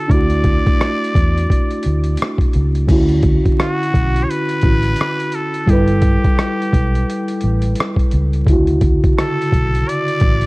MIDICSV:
0, 0, Header, 1, 5, 480
1, 0, Start_track
1, 0, Key_signature, 2, "major"
1, 0, Tempo, 697674
1, 67, Time_signature, 4, 2, 24, 8
1, 7199, End_track
2, 0, Start_track
2, 0, Title_t, "Muted trumpet"
2, 0, Program_c, 0, 59
2, 0, Note_on_c, 0, 69, 87
2, 78, Note_on_c, 0, 74, 103
2, 88, Note_off_c, 0, 69, 0
2, 1512, Note_off_c, 0, 74, 0
2, 2479, Note_on_c, 0, 66, 93
2, 2916, Note_on_c, 0, 73, 73
2, 2926, Note_off_c, 0, 66, 0
2, 2960, Note_on_c, 0, 71, 116
2, 2971, Note_off_c, 0, 73, 0
2, 3680, Note_on_c, 0, 69, 90
2, 3690, Note_off_c, 0, 71, 0
2, 3920, Note_on_c, 0, 67, 89
2, 3930, Note_off_c, 0, 69, 0
2, 5353, Note_off_c, 0, 67, 0
2, 6325, Note_on_c, 0, 69, 93
2, 6802, Note_on_c, 0, 74, 115
2, 6812, Note_off_c, 0, 69, 0
2, 7199, Note_off_c, 0, 74, 0
2, 7199, End_track
3, 0, Start_track
3, 0, Title_t, "Synth keys"
3, 0, Program_c, 1, 88
3, 0, Control_c, 1, 64, 127
3, 52, Note_on_c, 1, 62, 60
3, 66, Note_on_c, 1, 57, 57
3, 77, Control_c, 1, 64, 0
3, 79, Note_on_c, 1, 64, 52
3, 93, Note_on_c, 1, 66, 66
3, 189, Control_c, 1, 64, 127
3, 1952, Note_off_c, 1, 62, 0
3, 1959, Note_off_c, 1, 57, 0
3, 1965, Note_off_c, 1, 64, 0
3, 1972, Note_off_c, 1, 66, 0
3, 1975, Note_on_c, 1, 50, 76
3, 1989, Note_on_c, 1, 61, 73
3, 1997, Control_c, 1, 64, 0
3, 2002, Note_on_c, 1, 64, 67
3, 2016, Note_on_c, 1, 66, 77
3, 2132, Control_c, 1, 64, 127
3, 3157, Note_off_c, 1, 50, 0
3, 3164, Note_off_c, 1, 61, 0
3, 3171, Note_off_c, 1, 64, 0
3, 3177, Note_off_c, 1, 66, 0
3, 3183, Note_on_c, 1, 50, 43
3, 3191, Note_on_c, 1, 61, 40
3, 3197, Note_on_c, 1, 64, 37
3, 3204, Note_on_c, 1, 66, 45
3, 3895, Note_on_c, 1, 55, 60
3, 3900, Note_off_c, 1, 64, 0
3, 3905, Note_off_c, 1, 50, 0
3, 3908, Note_on_c, 1, 64, 53
3, 3909, Note_off_c, 1, 61, 0
3, 3915, Note_off_c, 1, 66, 0
3, 3915, Control_c, 1, 64, 0
3, 3921, Note_on_c, 1, 69, 63
3, 3937, Note_on_c, 1, 71, 65
3, 4036, Control_c, 1, 64, 127
3, 5793, Note_off_c, 1, 55, 0
3, 5800, Note_off_c, 1, 64, 0
3, 5807, Note_off_c, 1, 69, 0
3, 5814, Note_off_c, 1, 71, 0
3, 5816, Note_on_c, 1, 50, 71
3, 5829, Note_on_c, 1, 49, 63
3, 5835, Control_c, 1, 64, 0
3, 5844, Note_on_c, 1, 64, 69
3, 5857, Note_on_c, 1, 66, 75
3, 5957, Control_c, 1, 64, 127
3, 7199, Note_off_c, 1, 49, 0
3, 7199, Note_off_c, 1, 50, 0
3, 7199, Note_off_c, 1, 64, 0
3, 7199, Note_off_c, 1, 66, 0
3, 7199, End_track
4, 0, Start_track
4, 0, Title_t, "Fingered electric bass"
4, 0, Program_c, 2, 33
4, 71, Note_on_c, 2, 38, 98
4, 400, Note_off_c, 2, 38, 0
4, 797, Note_on_c, 2, 40, 82
4, 1000, Note_off_c, 2, 40, 0
4, 1279, Note_on_c, 2, 38, 84
4, 1482, Note_off_c, 2, 38, 0
4, 1758, Note_on_c, 2, 37, 91
4, 1961, Note_off_c, 2, 37, 0
4, 1990, Note_on_c, 2, 38, 87
4, 2319, Note_off_c, 2, 38, 0
4, 2715, Note_on_c, 2, 35, 83
4, 2919, Note_off_c, 2, 35, 0
4, 3190, Note_on_c, 2, 33, 81
4, 3397, Note_off_c, 2, 33, 0
4, 3908, Note_on_c, 2, 31, 96
4, 4238, Note_off_c, 2, 31, 0
4, 4634, Note_on_c, 2, 35, 84
4, 4839, Note_off_c, 2, 35, 0
4, 5116, Note_on_c, 2, 33, 89
4, 5320, Note_off_c, 2, 33, 0
4, 5596, Note_on_c, 2, 37, 82
4, 5800, Note_off_c, 2, 37, 0
4, 5830, Note_on_c, 2, 38, 99
4, 6160, Note_off_c, 2, 38, 0
4, 6557, Note_on_c, 2, 35, 83
4, 6760, Note_off_c, 2, 35, 0
4, 7032, Note_on_c, 2, 33, 93
4, 7199, Note_off_c, 2, 33, 0
4, 7199, End_track
5, 0, Start_track
5, 0, Title_t, "Drums"
5, 66, Note_on_c, 9, 36, 96
5, 74, Note_on_c, 9, 42, 69
5, 134, Note_off_c, 9, 36, 0
5, 143, Note_off_c, 9, 42, 0
5, 204, Note_on_c, 9, 42, 42
5, 273, Note_off_c, 9, 42, 0
5, 301, Note_on_c, 9, 42, 53
5, 304, Note_on_c, 9, 36, 88
5, 370, Note_off_c, 9, 42, 0
5, 373, Note_off_c, 9, 36, 0
5, 458, Note_on_c, 9, 36, 86
5, 458, Note_on_c, 9, 42, 33
5, 527, Note_off_c, 9, 36, 0
5, 527, Note_off_c, 9, 42, 0
5, 558, Note_on_c, 9, 37, 101
5, 560, Note_on_c, 9, 42, 55
5, 627, Note_off_c, 9, 37, 0
5, 629, Note_off_c, 9, 42, 0
5, 717, Note_on_c, 9, 42, 43
5, 786, Note_off_c, 9, 42, 0
5, 792, Note_on_c, 9, 36, 89
5, 799, Note_on_c, 9, 42, 68
5, 861, Note_off_c, 9, 36, 0
5, 868, Note_off_c, 9, 42, 0
5, 947, Note_on_c, 9, 42, 45
5, 1015, Note_off_c, 9, 42, 0
5, 1032, Note_on_c, 9, 36, 71
5, 1043, Note_on_c, 9, 42, 78
5, 1101, Note_off_c, 9, 36, 0
5, 1112, Note_off_c, 9, 42, 0
5, 1173, Note_on_c, 9, 42, 40
5, 1242, Note_off_c, 9, 42, 0
5, 1257, Note_on_c, 9, 42, 60
5, 1326, Note_off_c, 9, 42, 0
5, 1401, Note_on_c, 9, 42, 45
5, 1469, Note_off_c, 9, 42, 0
5, 1494, Note_on_c, 9, 42, 70
5, 1528, Note_on_c, 9, 37, 93
5, 1563, Note_off_c, 9, 42, 0
5, 1597, Note_off_c, 9, 37, 0
5, 1640, Note_on_c, 9, 36, 76
5, 1657, Note_on_c, 9, 42, 41
5, 1708, Note_off_c, 9, 36, 0
5, 1726, Note_off_c, 9, 42, 0
5, 1743, Note_on_c, 9, 42, 59
5, 1812, Note_off_c, 9, 42, 0
5, 1892, Note_on_c, 9, 42, 35
5, 1961, Note_off_c, 9, 42, 0
5, 1985, Note_on_c, 9, 36, 103
5, 1987, Note_on_c, 9, 49, 80
5, 1994, Note_on_c, 9, 42, 71
5, 2054, Note_off_c, 9, 36, 0
5, 2055, Note_off_c, 9, 49, 0
5, 2063, Note_off_c, 9, 42, 0
5, 2124, Note_on_c, 9, 42, 45
5, 2192, Note_off_c, 9, 42, 0
5, 2219, Note_on_c, 9, 42, 60
5, 2223, Note_on_c, 9, 36, 93
5, 2288, Note_off_c, 9, 42, 0
5, 2292, Note_off_c, 9, 36, 0
5, 2377, Note_on_c, 9, 36, 77
5, 2377, Note_on_c, 9, 42, 34
5, 2446, Note_off_c, 9, 36, 0
5, 2446, Note_off_c, 9, 42, 0
5, 2474, Note_on_c, 9, 37, 109
5, 2477, Note_on_c, 9, 42, 57
5, 2543, Note_off_c, 9, 37, 0
5, 2546, Note_off_c, 9, 42, 0
5, 2634, Note_on_c, 9, 42, 43
5, 2703, Note_off_c, 9, 42, 0
5, 2711, Note_on_c, 9, 36, 94
5, 2717, Note_on_c, 9, 42, 70
5, 2780, Note_off_c, 9, 36, 0
5, 2786, Note_off_c, 9, 42, 0
5, 2862, Note_on_c, 9, 42, 46
5, 2931, Note_off_c, 9, 42, 0
5, 2962, Note_on_c, 9, 42, 77
5, 3031, Note_off_c, 9, 42, 0
5, 3089, Note_on_c, 9, 42, 43
5, 3157, Note_off_c, 9, 42, 0
5, 3175, Note_on_c, 9, 42, 57
5, 3186, Note_on_c, 9, 36, 92
5, 3244, Note_off_c, 9, 42, 0
5, 3255, Note_off_c, 9, 36, 0
5, 3321, Note_on_c, 9, 42, 48
5, 3390, Note_off_c, 9, 42, 0
5, 3413, Note_on_c, 9, 42, 71
5, 3446, Note_on_c, 9, 37, 93
5, 3481, Note_off_c, 9, 42, 0
5, 3515, Note_off_c, 9, 37, 0
5, 3576, Note_on_c, 9, 42, 45
5, 3645, Note_off_c, 9, 42, 0
5, 3660, Note_on_c, 9, 42, 64
5, 3728, Note_off_c, 9, 42, 0
5, 3811, Note_on_c, 9, 42, 40
5, 3880, Note_off_c, 9, 42, 0
5, 3904, Note_on_c, 9, 36, 91
5, 3913, Note_on_c, 9, 42, 75
5, 3973, Note_off_c, 9, 36, 0
5, 3982, Note_off_c, 9, 42, 0
5, 4042, Note_on_c, 9, 42, 46
5, 4111, Note_off_c, 9, 42, 0
5, 4139, Note_on_c, 9, 42, 61
5, 4143, Note_on_c, 9, 36, 87
5, 4208, Note_off_c, 9, 42, 0
5, 4212, Note_off_c, 9, 36, 0
5, 4296, Note_on_c, 9, 42, 34
5, 4297, Note_on_c, 9, 36, 86
5, 4365, Note_off_c, 9, 42, 0
5, 4366, Note_off_c, 9, 36, 0
5, 4395, Note_on_c, 9, 37, 113
5, 4397, Note_on_c, 9, 42, 56
5, 4464, Note_off_c, 9, 37, 0
5, 4466, Note_off_c, 9, 42, 0
5, 4554, Note_on_c, 9, 42, 41
5, 4623, Note_off_c, 9, 42, 0
5, 4631, Note_on_c, 9, 36, 88
5, 4637, Note_on_c, 9, 42, 72
5, 4700, Note_off_c, 9, 36, 0
5, 4706, Note_off_c, 9, 42, 0
5, 4783, Note_on_c, 9, 42, 47
5, 4851, Note_off_c, 9, 42, 0
5, 4882, Note_on_c, 9, 42, 80
5, 4951, Note_off_c, 9, 42, 0
5, 5009, Note_on_c, 9, 42, 43
5, 5078, Note_off_c, 9, 42, 0
5, 5095, Note_on_c, 9, 42, 59
5, 5164, Note_off_c, 9, 42, 0
5, 5241, Note_on_c, 9, 42, 47
5, 5310, Note_off_c, 9, 42, 0
5, 5335, Note_on_c, 9, 42, 71
5, 5369, Note_on_c, 9, 37, 100
5, 5404, Note_off_c, 9, 42, 0
5, 5437, Note_off_c, 9, 37, 0
5, 5480, Note_on_c, 9, 36, 73
5, 5499, Note_on_c, 9, 42, 43
5, 5548, Note_off_c, 9, 36, 0
5, 5568, Note_off_c, 9, 42, 0
5, 5582, Note_on_c, 9, 42, 68
5, 5651, Note_off_c, 9, 42, 0
5, 5733, Note_on_c, 9, 42, 36
5, 5802, Note_off_c, 9, 42, 0
5, 5825, Note_on_c, 9, 36, 96
5, 5835, Note_on_c, 9, 42, 65
5, 5894, Note_off_c, 9, 36, 0
5, 5904, Note_off_c, 9, 42, 0
5, 5966, Note_on_c, 9, 42, 48
5, 6035, Note_off_c, 9, 42, 0
5, 6062, Note_on_c, 9, 42, 58
5, 6064, Note_on_c, 9, 36, 94
5, 6130, Note_off_c, 9, 42, 0
5, 6132, Note_off_c, 9, 36, 0
5, 6218, Note_on_c, 9, 36, 82
5, 6218, Note_on_c, 9, 42, 37
5, 6286, Note_off_c, 9, 36, 0
5, 6286, Note_off_c, 9, 42, 0
5, 6319, Note_on_c, 9, 37, 102
5, 6321, Note_on_c, 9, 42, 59
5, 6387, Note_off_c, 9, 37, 0
5, 6390, Note_off_c, 9, 42, 0
5, 6478, Note_on_c, 9, 42, 44
5, 6547, Note_off_c, 9, 42, 0
5, 6552, Note_on_c, 9, 36, 91
5, 6561, Note_on_c, 9, 42, 68
5, 6621, Note_off_c, 9, 36, 0
5, 6630, Note_off_c, 9, 42, 0
5, 6706, Note_on_c, 9, 42, 49
5, 6775, Note_off_c, 9, 42, 0
5, 6805, Note_on_c, 9, 42, 83
5, 6874, Note_off_c, 9, 42, 0
5, 6935, Note_on_c, 9, 42, 41
5, 7003, Note_off_c, 9, 42, 0
5, 7017, Note_on_c, 9, 42, 55
5, 7027, Note_on_c, 9, 36, 95
5, 7086, Note_off_c, 9, 42, 0
5, 7095, Note_off_c, 9, 36, 0
5, 7164, Note_on_c, 9, 42, 48
5, 7199, Note_off_c, 9, 42, 0
5, 7199, End_track
0, 0, End_of_file